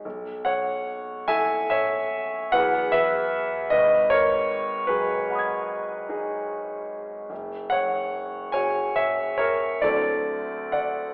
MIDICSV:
0, 0, Header, 1, 2, 480
1, 0, Start_track
1, 0, Tempo, 824176
1, 27, Time_signature, 9, 3, 24, 8
1, 1467, Tempo, 790514
1, 3387, Tempo, 811908
1, 4827, Tempo, 848656
1, 5787, Tempo, 909091
1, 6486, End_track
2, 0, Start_track
2, 0, Title_t, "Grand piano"
2, 0, Program_c, 0, 0
2, 0, Control_c, 0, 64, 127
2, 30, Note_on_c, 0, 35, 39
2, 36, Control_c, 0, 64, 0
2, 137, Control_c, 0, 64, 127
2, 260, Note_on_c, 0, 78, 64
2, 267, Note_on_c, 0, 73, 49
2, 722, Note_off_c, 0, 73, 0
2, 742, Note_off_c, 0, 78, 0
2, 743, Note_on_c, 0, 80, 77
2, 745, Note_on_c, 0, 64, 32
2, 745, Note_on_c, 0, 76, 55
2, 750, Note_on_c, 0, 69, 36
2, 971, Note_off_c, 0, 76, 0
2, 987, Note_off_c, 0, 80, 0
2, 989, Note_on_c, 0, 76, 66
2, 996, Note_on_c, 0, 73, 49
2, 1445, Note_off_c, 0, 64, 0
2, 1446, Note_off_c, 0, 35, 0
2, 1447, Note_off_c, 0, 69, 0
2, 1449, Note_off_c, 0, 73, 0
2, 1468, Note_on_c, 0, 78, 84
2, 1469, Note_off_c, 0, 76, 0
2, 1474, Note_on_c, 0, 64, 40
2, 1475, Note_on_c, 0, 54, 38
2, 1475, Note_on_c, 0, 71, 62
2, 1477, Note_on_c, 0, 68, 38
2, 1478, Control_c, 0, 64, 0
2, 1479, Note_on_c, 0, 40, 50
2, 1482, Note_on_c, 0, 59, 38
2, 1575, Control_c, 0, 64, 127
2, 1697, Note_off_c, 0, 71, 0
2, 1710, Note_on_c, 0, 76, 71
2, 1711, Note_off_c, 0, 78, 0
2, 1716, Note_on_c, 0, 71, 60
2, 2177, Note_off_c, 0, 54, 0
2, 2177, Note_off_c, 0, 71, 0
2, 2180, Note_off_c, 0, 64, 0
2, 2181, Note_off_c, 0, 59, 0
2, 2182, Note_off_c, 0, 40, 0
2, 2185, Note_off_c, 0, 68, 0
2, 2186, Note_on_c, 0, 75, 77
2, 2197, Note_on_c, 0, 71, 53
2, 2198, Note_off_c, 0, 76, 0
2, 2199, Note_on_c, 0, 32, 50
2, 2209, Control_c, 0, 64, 0
2, 2315, Control_c, 0, 64, 127
2, 2422, Note_off_c, 0, 71, 0
2, 2427, Note_on_c, 0, 73, 74
2, 2433, Note_off_c, 0, 75, 0
2, 2437, Note_on_c, 0, 70, 53
2, 2886, Note_off_c, 0, 70, 0
2, 2895, Note_on_c, 0, 71, 67
2, 2903, Note_on_c, 0, 68, 50
2, 2905, Note_off_c, 0, 73, 0
2, 2905, Note_on_c, 0, 54, 40
2, 3157, Note_on_c, 0, 78, 31
2, 3170, Note_on_c, 0, 83, 32
2, 3187, Note_on_c, 0, 87, 34
2, 3208, Note_on_c, 0, 92, 30
2, 3626, Note_off_c, 0, 68, 0
2, 3628, Note_on_c, 0, 63, 41
2, 3634, Note_on_c, 0, 68, 45
2, 4056, Note_off_c, 0, 54, 0
2, 4099, Note_off_c, 0, 71, 0
2, 4322, Note_off_c, 0, 32, 0
2, 4322, Note_off_c, 0, 63, 0
2, 4325, Note_off_c, 0, 68, 0
2, 4326, Note_off_c, 0, 78, 0
2, 4332, Note_off_c, 0, 83, 0
2, 4341, Note_off_c, 0, 87, 0
2, 4342, Note_on_c, 0, 30, 47
2, 4351, Note_off_c, 0, 92, 0
2, 4355, Control_c, 0, 64, 0
2, 4464, Control_c, 0, 64, 127
2, 4579, Note_on_c, 0, 78, 73
2, 4593, Note_on_c, 0, 73, 50
2, 5042, Note_off_c, 0, 73, 0
2, 5057, Note_on_c, 0, 80, 65
2, 5058, Note_off_c, 0, 78, 0
2, 5062, Note_on_c, 0, 66, 33
2, 5065, Note_on_c, 0, 68, 37
2, 5065, Note_on_c, 0, 73, 54
2, 5282, Note_off_c, 0, 73, 0
2, 5294, Note_off_c, 0, 80, 0
2, 5301, Note_on_c, 0, 73, 47
2, 5302, Note_on_c, 0, 76, 62
2, 5525, Note_off_c, 0, 73, 0
2, 5540, Note_on_c, 0, 73, 64
2, 5542, Note_off_c, 0, 76, 0
2, 5547, Note_on_c, 0, 70, 48
2, 5764, Note_off_c, 0, 30, 0
2, 5766, Note_off_c, 0, 66, 0
2, 5768, Note_off_c, 0, 68, 0
2, 5775, Note_off_c, 0, 70, 0
2, 5788, Note_off_c, 0, 73, 0
2, 5788, Note_on_c, 0, 74, 64
2, 5791, Note_on_c, 0, 54, 36
2, 5793, Note_on_c, 0, 64, 32
2, 5796, Note_on_c, 0, 69, 47
2, 5797, Note_on_c, 0, 38, 43
2, 5797, Note_on_c, 0, 60, 32
2, 5798, Control_c, 0, 64, 0
2, 5875, Control_c, 0, 64, 127
2, 6247, Note_off_c, 0, 69, 0
2, 6264, Note_off_c, 0, 74, 0
2, 6266, Note_on_c, 0, 78, 58
2, 6272, Note_on_c, 0, 74, 45
2, 6486, Note_off_c, 0, 38, 0
2, 6486, Note_off_c, 0, 54, 0
2, 6486, Note_off_c, 0, 60, 0
2, 6486, Note_off_c, 0, 64, 0
2, 6486, Note_off_c, 0, 74, 0
2, 6486, Note_off_c, 0, 78, 0
2, 6486, End_track
0, 0, End_of_file